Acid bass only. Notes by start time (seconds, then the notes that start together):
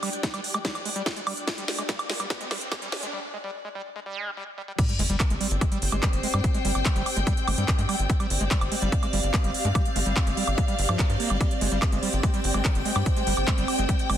0.03 G3
0.23 G#3
0.34 G3
0.54 G#3
0.65 G3
0.85 G#3
0.96 G3
1.16 G#3
1.27 G3
1.48 G#3
1.58 G3
1.79 G#3
1.89 G3
2.10 G#3
2.20 G3
2.41 G#3
2.51 G3
2.72 G#3
2.82 G3
3.03 G#3
3.13 G3
3.34 G#3
3.44 G3
3.65 G#3
3.75 G3
3.96 G#3
4.06 G3
4.16 G#3
4.27 G3
4.37 G3
4.58 G3
4.68 G3
4.79 G3
4.99 G#3
5.10 G3
5.30 G#3
5.41 G3
5.61 G#3
5.72 G3
5.92 G#3
6.03 G3
6.23 G#3
6.34 G3
6.54 G#3
6.65 G3
6.85 G#3
6.96 G3
7.16 G#3
7.27 G3
7.48 G#3
7.58 G3
7.79 G#3
7.89 G3
8.10 G#3
8.20 G3
8.41 G#3
8.51 G3
8.72 G#3
8.82 G3
9.03 G#3
9.13 G3
9.34 G#3
9.44 G3
9.65 G#3
9.75 G3
9.96 G#3
10.06 G3
10.27 G#3
10.37 G3
10.58 G#3
10.68 G3
10.89 F3
10.99 G3
11.20 A#3
11.30 G3
11.41 G3
11.61 G#3
11.72 G3
11.92 G#3
12.03 G3
12.23 G#3
12.34 G3
12.54 G#3
12.65 G3
12.85 G#3
12.96 G3
13.16 G#3
13.27 G3
13.48 G#3
13.58 G3
13.79 G#3
13.89 G3
14.10 G#3